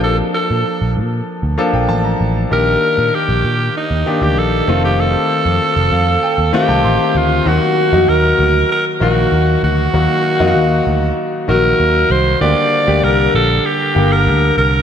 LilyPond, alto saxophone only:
\new Staff \with { instrumentName = "Alto saxophone" } { \time 4/4 \key ees \lydian \tempo 4 = 97 a'8 a'4 r2 r8 | bes'4 g'4 ees'8. g'16 a'8. g'16 | a'2~ a'8 g'4 f'8 | ges'4 bes'4 bes'8 ges'4 ges'8~ |
ges'2 r8 bes'4 c''8 | d''4 bes'8 a'8 g'8. bes'8. bes'8 | }